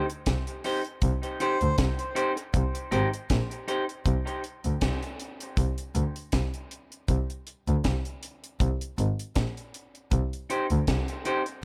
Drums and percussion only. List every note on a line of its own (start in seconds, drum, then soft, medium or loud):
0.10 closed hi-hat medium
0.26 kick loud
0.26 snare loud
0.26 closed hi-hat loud
0.47 closed hi-hat soft
0.64 open hi-hat medium
0.85 closed hi-hat soft
1.02 kick loud
1.02 closed hi-hat medium
1.23 closed hi-hat medium
1.40 closed hi-hat medium
1.61 closed hi-hat medium
1.78 kick loud
1.78 snare loud
1.78 closed hi-hat medium
1.99 closed hi-hat soft
2.16 closed hi-hat medium
2.37 closed hi-hat medium
2.54 kick loud
2.54 closed hi-hat loud
2.75 closed hi-hat medium
2.92 closed hi-hat medium
3.14 closed hi-hat medium
3.30 kick loud
3.30 snare loud
3.30 closed hi-hat medium
3.51 closed hi-hat soft
3.68 closed hi-hat medium
3.89 closed hi-hat soft
4.06 kick loud
4.06 closed hi-hat medium
4.27 closed hi-hat soft
4.44 closed hi-hat medium
4.64 closed hi-hat medium
4.81 kick loud
4.81 snare loud
4.81 closed hi-hat medium
5.03 closed hi-hat soft
5.19 closed hi-hat medium
5.40 closed hi-hat medium
5.57 kick loud
5.57 closed hi-hat loud
5.78 closed hi-hat medium
5.95 closed hi-hat medium
6.16 closed hi-hat medium
6.32 kick loud
6.32 snare loud
6.32 closed hi-hat loud
6.54 closed hi-hat soft
6.71 closed hi-hat medium
6.92 closed hi-hat soft
7.08 kick loud
7.08 closed hi-hat medium
7.30 closed hi-hat soft
7.47 closed hi-hat medium
7.67 closed hi-hat medium
7.84 kick medium
7.84 snare loud
7.84 closed hi-hat medium
8.05 closed hi-hat soft
8.23 closed hi-hat medium
8.44 closed hi-hat medium
8.60 kick loud
8.60 closed hi-hat loud
8.81 closed hi-hat medium
8.98 closed hi-hat medium
9.19 closed hi-hat medium
9.36 kick loud
9.36 snare loud
9.36 closed hi-hat medium
9.57 closed hi-hat soft
9.74 closed hi-hat medium
9.95 closed hi-hat soft
10.11 kick loud
10.11 closed hi-hat medium
10.33 closed hi-hat soft
10.50 closed hi-hat medium
10.70 closed hi-hat medium
10.87 kick loud
10.87 snare loud
10.87 closed hi-hat medium
11.08 closed hi-hat soft
11.25 closed hi-hat medium
11.46 closed hi-hat medium